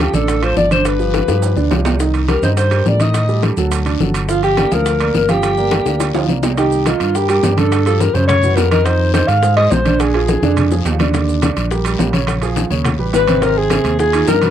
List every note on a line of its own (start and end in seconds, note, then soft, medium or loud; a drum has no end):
0.00 0.11 F3 medium
0.00 0.11 F4 medium
0.00 0.16 G4 medium
0.00 0.12 A4 medium
0.00 high bongo medium
0.00 high timbale medium
0.00 maracas soft
0.14 0.54 A1 medium
0.14 0.37 D3 medium
0.14 0.37 D4 medium
0.14 0.45 A4 medium
0.14 0.37 D5 medium
0.14 high bongo soft
0.14 high conga medium
0.14 short guiro medium
0.14 maracas medium
0.28 high bongo medium
0.28 high conga soft
0.28 high timbale medium
0.28 long guiro medium
0.28 maracas medium
0.42 0.66 F3 medium
0.42 0.66 F4 medium
0.42 0.66 A4 medium
0.42 0.57 C5 medium
0.42 high bongo soft
0.42 high conga soft
0.42 high timbale medium
0.42 maracas soft
0.56 1.23 G1 medium
0.56 0.70 D5 loud
0.56 high bongo soft
0.56 low bongo medium
0.56 high conga medium
0.56 short guiro medium
0.56 maracas soft
0.71 0.94 D3 medium
0.71 0.95 D4 medium
0.71 0.88 C5 medium
0.71 0.95 D5 medium
0.71 high conga medium
0.71 high timbale medium
0.71 short guiro medium
0.71 maracas medium
0.85 1.72 B4 medium
0.85 high bongo medium
0.85 high conga soft
0.85 high timbale medium
0.85 long guiro medium
0.85 maracas medium
0.99 1.23 F3 medium
0.99 1.23 F4 medium
0.99 1.23 G4 medium
0.99 high bongo soft
0.99 high conga soft
0.99 maracas soft
1.14 high bongo medium
1.14 high conga medium
1.14 high timbale medium
1.14 short guiro medium
1.14 maracas soft
1.28 1.55 G2 medium
1.28 1.52 F3 medium
1.28 1.52 F4 medium
1.28 1.52 G4 medium
1.28 high bongo medium
1.28 short guiro medium
1.28 maracas medium
1.42 high conga soft
1.42 high timbale medium
1.42 long guiro medium
1.42 maracas medium
1.56 1.70 D2 medium
1.56 1.68 D3 medium
1.56 1.68 D4 medium
1.56 1.69 D5 medium
1.56 low bongo medium
1.56 high conga soft
1.56 maracas soft
1.71 2.37 C2 medium
1.71 1.95 F3 medium
1.71 1.95 F4 medium
1.71 1.95 G4 medium
1.71 low bongo medium
1.71 high conga medium
1.71 low timbale medium
1.71 short guiro medium
1.71 maracas soft
1.85 low bongo medium
1.85 high conga soft
1.85 low timbale medium
1.85 short guiro medium
1.85 maracas medium
1.99 2.23 D#3 medium
1.99 2.23 D#4 medium
1.99 2.23 D#5 medium
1.99 high bongo medium
1.99 high conga soft
1.99 long guiro medium
1.99 maracas medium
2.14 high bongo soft
2.14 high conga soft
2.14 high timbale medium
2.14 maracas soft
2.28 2.40 G3 medium
2.28 2.40 G4 medium
2.28 2.40 A#4 medium
2.28 2.42 A#4 medium
2.28 high bongo medium
2.28 high conga medium
2.28 high timbale medium
2.28 short guiro medium
2.28 maracas soft
2.43 2.83 G2 loud
2.43 2.66 D#3 medium
2.43 2.66 D#4 medium
2.43 2.50 C5 medium
2.43 2.67 D#5 medium
2.43 high bongo soft
2.43 high conga medium
2.43 short guiro medium
2.43 maracas medium
2.57 2.89 C5 medium
2.57 high bongo medium
2.57 high timbale medium
2.57 long guiro medium
2.57 maracas medium
2.71 2.95 G3 medium
2.71 2.95 G4 medium
2.71 2.95 A#4 medium
2.71 high bongo soft
2.71 high conga soft
2.71 high timbale medium
2.71 maracas soft
2.86 3.52 A2 medium
2.86 3.03 D5 medium
2.86 high bongo soft
2.86 low bongo medium
2.86 high conga medium
2.86 short guiro medium
2.86 maracas soft
3.00 3.24 D#3 medium
3.00 3.24 D#4 medium
3.00 3.24 D#5 medium
3.00 3.44 D#5 medium
3.00 high conga medium
3.00 high timbale medium
3.00 short guiro medium
3.00 maracas medium
3.14 high bongo medium
3.14 high conga soft
3.14 high timbale medium
3.14 long guiro medium
3.14 maracas medium
3.29 3.52 G3 medium
3.29 3.52 G4 medium
3.29 3.52 A4 medium
3.29 high bongo soft
3.29 high conga soft
3.29 maracas soft
3.43 high bongo medium
3.43 high conga medium
3.43 high timbale medium
3.43 short guiro medium
3.43 maracas soft
3.57 3.97 D2 medium
3.57 3.81 F#3 medium
3.57 3.81 F#4 medium
3.57 3.81 A4 medium
3.57 high bongo soft
3.57 high conga soft
3.57 short guiro medium
3.57 maracas medium
3.71 high bongo medium
3.71 high conga soft
3.71 high timbale medium
3.71 long guiro medium
3.71 maracas medium
3.86 3.97 D3 medium
3.86 3.98 D4 medium
3.86 3.98 D5 medium
3.86 high bongo soft
3.86 high conga soft
3.86 high timbale medium
3.86 maracas soft
4.00 4.66 G1 loud
4.00 4.24 F#3 medium
4.00 4.24 F#4 medium
4.00 4.24 A4 medium
4.00 high bongo soft
4.00 low bongo medium
4.00 high conga medium
4.00 short guiro medium
4.00 maracas soft
4.14 high conga soft
4.14 high timbale medium
4.14 short guiro medium
4.14 maracas medium
4.28 4.52 F3 medium
4.28 4.52 F4 medium
4.28 4.43 F4 medium
4.28 4.52 F5 medium
4.28 high bongo medium
4.28 high conga soft
4.28 long guiro medium
4.28 maracas medium
4.43 4.75 G4 loud
4.43 high bongo soft
4.43 high conga soft
4.43 high timbale medium
4.43 maracas soft
4.57 4.69 A#3 medium
4.57 4.69 A#4 medium
4.57 4.70 D5 medium
4.57 high bongo medium
4.57 high conga medium
4.57 high timbale medium
4.57 short guiro medium
4.57 maracas soft
4.71 5.12 D2 loud
4.71 4.95 F3 medium
4.71 4.95 F4 medium
4.71 5.15 A#4 medium
4.71 4.95 F5 medium
4.71 high bongo soft
4.71 high conga medium
4.71 short guiro medium
4.71 maracas medium
4.86 high bongo medium
4.86 high conga soft
4.86 high timbale medium
4.86 long guiro medium
4.86 maracas medium
5.00 5.24 A#3 medium
5.00 5.24 A#4 medium
5.00 5.24 D5 medium
5.00 high bongo soft
5.00 high conga soft
5.00 high timbale medium
5.00 maracas soft
5.14 5.81 G1 medium
5.14 5.32 A#4 medium
5.14 high bongo soft
5.14 low bongo medium
5.14 high conga medium
5.14 short guiro medium
5.14 maracas soft
5.28 5.52 F3 medium
5.28 5.52 F4 medium
5.28 6.30 G4 medium
5.28 5.52 F5 medium
5.28 high conga medium
5.28 high timbale medium
5.28 short guiro medium
5.28 maracas medium
5.43 high bongo medium
5.43 high conga soft
5.43 high timbale medium
5.43 long guiro medium
5.43 maracas medium
5.57 5.81 A#3 medium
5.57 5.81 A#4 medium
5.57 5.81 D5 medium
5.57 high bongo soft
5.57 high conga soft
5.57 maracas soft
5.71 high bongo medium
5.71 high conga medium
5.71 high timbale medium
5.71 short guiro medium
5.71 maracas soft
5.86 6.12 D2 medium
5.86 6.10 A#3 medium
5.86 6.10 A#4 medium
5.86 6.10 D5 medium
5.86 high bongo medium
5.86 high conga soft
5.86 short guiro medium
5.86 maracas medium
6.00 low bongo medium
6.00 high conga soft
6.00 high timbale medium
6.00 long guiro medium
6.00 maracas medium
6.14 6.28 D2 medium
6.14 6.27 F3 medium
6.14 6.27 F4 medium
6.14 6.27 F5 medium
6.14 low bongo medium
6.14 high conga soft
6.14 high timbale loud
6.14 maracas soft
6.28 6.95 C2 medium
6.28 6.52 A#3 medium
6.28 6.52 A#4 medium
6.28 6.53 D5 medium
6.28 low bongo medium
6.28 high conga medium
6.28 short guiro medium
6.28 maracas soft
6.43 low bongo medium
6.43 high conga soft
6.43 low timbale medium
6.43 short guiro medium
6.43 maracas medium
6.57 6.81 D#3 medium
6.57 6.81 D#4 medium
6.57 6.89 G4 medium
6.57 6.81 D#5 medium
6.57 high bongo medium
6.57 high conga soft
6.57 high timbale medium
6.57 long guiro medium
6.57 maracas medium
6.72 high bongo soft
6.72 high conga soft
6.72 maracas medium
6.86 7.10 D#3 medium
6.86 7.10 D#4 medium
6.86 7.17 F4 medium
6.86 7.10 D#5 medium
6.86 high bongo medium
6.86 high conga medium
6.86 high timbale medium
6.86 low timbale medium
6.86 short guiro medium
6.86 maracas medium
7.00 7.40 G2 medium
7.00 high bongo soft
7.00 high conga soft
7.00 high timbale medium
7.00 short guiro medium
7.00 maracas soft
7.15 7.26 G3 medium
7.15 7.27 G4 medium
7.15 7.29 G4 medium
7.15 7.27 A#4 medium
7.15 high bongo medium
7.15 high conga soft
7.15 long guiro medium
7.15 maracas medium
7.29 7.52 G3 medium
7.29 7.53 G4 medium
7.29 7.60 G4 medium
7.29 7.53 A#4 medium
7.29 high conga soft
7.29 high timbale medium
7.29 maracas medium
7.43 8.09 G2 medium
7.43 high bongo soft
7.43 low bongo medium
7.43 high conga medium
7.43 low timbale medium
7.43 short guiro medium
7.43 maracas medium
7.57 7.81 D3 medium
7.57 7.81 D4 medium
7.57 7.85 A4 medium
7.57 7.81 D5 medium
7.57 high bongo soft
7.57 high conga medium
7.57 high timbale medium
7.57 short guiro medium
7.57 maracas soft
7.72 high bongo medium
7.72 high conga soft
7.72 high timbale medium
7.72 long guiro medium
7.72 maracas medium
7.86 8.09 F3 medium
7.86 8.10 F4 medium
7.86 8.10 G4 medium
7.86 8.02 A4 medium
7.86 high bongo soft
7.86 high conga soft
7.86 high timbale medium
7.86 maracas medium
8.00 8.16 A#4 medium
8.00 high bongo medium
8.00 high conga medium
8.00 low timbale medium
8.00 short guiro medium
8.00 maracas medium
8.14 8.41 F#2 medium
8.14 8.38 C#3 medium
8.14 8.38 C#4 medium
8.14 8.27 C5 medium
8.14 8.38 C#5 medium
8.14 high bongo soft
8.14 high conga soft
8.14 short guiro medium
8.14 maracas soft
8.28 8.57 C#5 loud
8.28 high bongo medium
8.28 high conga soft
8.28 low conga medium
8.28 high timbale medium
8.28 long guiro medium
8.28 maracas medium
8.43 8.56 F#2 medium
8.43 8.66 E3 medium
8.43 8.66 E4 medium
8.43 8.67 F#4 medium
8.43 high conga soft
8.43 low conga medium
8.43 maracas medium
8.56 9.23 F2 medium
8.56 8.70 A#4 medium
8.56 high bongo soft
8.56 low bongo medium
8.56 high timbale medium
8.56 low timbale medium
8.56 short guiro medium
8.56 maracas medium
8.71 8.83 D#3 medium
8.71 8.83 D#4 medium
8.71 8.86 A#4 loud
8.71 8.83 D#5 medium
8.71 high bongo soft
8.71 high conga medium
8.71 high timbale medium
8.71 short guiro medium
8.71 maracas soft
8.85 9.09 D#3 medium
8.85 9.09 D#4 medium
8.85 9.13 C5 loud
8.85 9.09 D#5 medium
8.85 high bongo medium
8.85 high conga soft
8.85 high timbale medium
8.85 long guiro medium
8.85 maracas medium
9.00 high bongo soft
9.00 high conga soft
9.14 9.38 D#3 medium
9.14 9.38 D#4 medium
9.14 9.29 C5 loud
9.14 9.38 D#5 medium
9.14 high bongo medium
9.14 high conga medium
9.14 high timbale medium
9.14 low timbale medium
9.14 short guiro medium
9.14 maracas medium
9.28 9.68 G#2 medium
9.28 9.56 F5 medium
9.28 high bongo soft
9.28 high conga soft
9.28 high timbale medium
9.28 short guiro medium
9.28 maracas soft
9.43 9.54 G#3 medium
9.43 9.55 G#4 medium
9.43 9.55 C5 medium
9.43 high bongo medium
9.43 high conga soft
9.43 long guiro medium
9.43 maracas medium
9.57 9.81 G#3 medium
9.57 9.81 G#4 medium
9.57 9.81 C5 medium
9.57 9.73 D#5 loud
9.57 high conga soft
9.57 high timbale loud
9.71 10.37 A#1 medium
9.71 10.02 C5 loud
9.71 high bongo soft
9.71 low bongo medium
9.71 high conga medium
9.71 low timbale medium
9.71 short guiro medium
9.71 maracas medium
9.85 10.09 D3 medium
9.85 10.09 D4 medium
9.85 10.09 D5 medium
9.85 high bongo soft
9.85 high conga medium
9.85 high timbale medium
9.85 short guiro medium
9.85 maracas soft
10.00 10.86 G#4 medium
10.00 high bongo medium
10.00 high conga soft
10.00 high timbale medium
10.00 long guiro medium
10.00 maracas medium
10.14 10.38 F3 medium
10.14 10.38 F4 medium
10.14 10.38 G#4 medium
10.14 high bongo soft
10.14 high timbale medium
10.28 high bongo medium
10.28 high conga medium
10.28 low timbale medium
10.28 short guiro medium
10.28 maracas medium
10.42 10.82 F2 medium
10.42 10.66 D3 medium
10.42 10.66 D4 medium
10.42 10.66 D5 medium
10.42 high bongo medium
10.42 high conga soft
10.42 short guiro medium
10.42 maracas soft
10.56 high conga soft
10.56 low conga medium
10.56 high timbale medium
10.56 long guiro medium
10.56 maracas medium
10.71 10.95 F3 medium
10.71 10.95 F4 medium
10.71 10.95 G#4 medium
10.71 low bongo medium
10.71 maracas medium
10.85 11.51 D#2 loud
10.85 high conga soft
10.85 high timbale medium
10.85 low timbale medium
10.85 short guiro medium
10.85 maracas medium
10.99 11.11 D3 medium
10.99 11.12 D4 medium
10.99 11.12 D5 medium
10.99 low bongo medium
10.99 high conga medium
10.99 high timbale medium
10.99 short guiro medium
10.99 maracas soft
11.14 11.38 D3 medium
11.14 11.38 D4 medium
11.14 11.38 D5 medium
11.14 high bongo medium
11.14 high conga soft
11.14 high timbale medium
11.14 long guiro medium
11.14 maracas medium
11.29 high bongo soft
11.29 high conga soft
11.29 maracas medium
11.42 11.66 D3 medium
11.42 11.66 D4 medium
11.42 11.66 D5 medium
11.42 high bongo medium
11.42 high conga loud
11.42 high timbale medium
11.42 low timbale medium
11.42 short guiro medium
11.42 maracas medium
11.56 11.97 A#1 loud
11.56 high bongo soft
11.56 high conga soft
11.56 high timbale medium
11.56 short guiro medium
11.56 maracas soft
11.71 11.83 G3 medium
11.71 11.83 G4 medium
11.71 11.83 A#4 medium
11.71 high bongo medium
11.71 high conga soft
11.71 long guiro medium
11.71 maracas medium
11.85 12.09 G3 medium
11.85 12.09 G4 medium
11.85 12.09 A#4 medium
11.85 high conga soft
11.85 high timbale loud
11.85 maracas medium
11.99 12.65 A#1 medium
11.99 high bongo soft
11.99 low bongo medium
11.99 high conga medium
11.99 low timbale medium
11.99 short guiro medium
11.99 maracas medium
12.13 12.37 C#3 medium
12.13 12.37 C#4 medium
12.13 12.37 C#5 medium
12.13 high bongo soft
12.13 high conga medium
12.13 high timbale medium
12.13 short guiro medium
12.13 maracas soft
12.27 high bongo medium
12.27 high conga soft
12.27 high timbale medium
12.27 maracas medium
12.42 12.66 F3 medium
12.42 12.66 F4 medium
12.42 12.66 G#4 medium
12.42 high bongo soft
12.42 high conga soft
12.42 high timbale medium
12.42 maracas medium
12.56 high bongo medium
12.56 high conga medium
12.56 low timbale medium
12.56 short guiro medium
12.56 maracas medium
12.70 12.97 D#2 medium
12.70 12.94 C#3 medium
12.70 12.94 C#4 medium
12.70 12.94 C#5 medium
12.70 high bongo soft
12.70 high conga soft
12.70 short guiro medium
12.70 maracas soft
12.84 high bongo medium
12.84 high conga soft
12.84 low conga medium
12.84 high timbale medium
12.84 long guiro medium
12.84 maracas medium
12.99 13.13 A1 medium
12.99 13.22 G3 medium
12.99 13.23 G4 medium
12.99 13.23 B4 medium
12.99 high conga soft
13.13 13.79 G#1 medium
13.13 13.45 B4 loud
13.13 high bongo soft
13.13 low bongo medium
13.13 high conga soft
13.13 high timbale medium
13.13 low timbale medium
13.13 short guiro medium
13.13 maracas medium
13.27 13.40 C3 medium
13.27 13.40 C4 medium
13.27 13.40 C5 medium
13.27 high bongo soft
13.27 high conga medium
13.27 high timbale loud
13.27 short guiro medium
13.27 maracas soft
13.42 13.65 C3 medium
13.42 13.66 C4 medium
13.42 13.59 A#4 loud
13.42 13.66 C5 medium
13.42 high bongo medium
13.42 high timbale medium
13.42 long guiro medium
13.42 maracas medium
13.57 13.99 G#4 loud
13.57 high bongo soft
13.57 high conga soft
13.70 13.94 C3 medium
13.70 13.94 C4 medium
13.70 13.94 C5 medium
13.70 high bongo medium
13.70 high conga medium
13.70 high timbale medium
13.70 low timbale medium
13.70 short guiro medium
13.70 maracas medium
13.84 14.24 D#2 medium
13.84 high bongo soft
13.84 high conga soft
13.84 high timbale medium
13.84 short guiro medium
13.84 maracas soft
13.99 14.11 D#3 medium
13.99 14.11 D#4 medium
13.99 14.11 F4 medium
13.99 14.26 G#4 loud
13.99 high bongo medium
13.99 high conga soft
13.99 long guiro medium
13.99 maracas medium
14.13 14.37 D#3 medium
14.13 14.37 D#4 medium
14.13 14.37 F4 medium
14.13 high conga soft
14.13 high timbale loud
14.13 maracas medium
14.27 14.50 G2 medium
14.27 14.50 A#4 loud
14.27 high bongo soft
14.27 low bongo medium
14.27 high conga medium
14.27 low timbale medium
14.27 short guiro medium
14.27 maracas medium
14.41 14.50 B2 medium
14.41 14.50 B3 medium
14.41 14.50 B4 medium
14.41 high bongo soft
14.41 high conga medium
14.41 high timbale medium
14.41 short guiro medium
14.41 maracas soft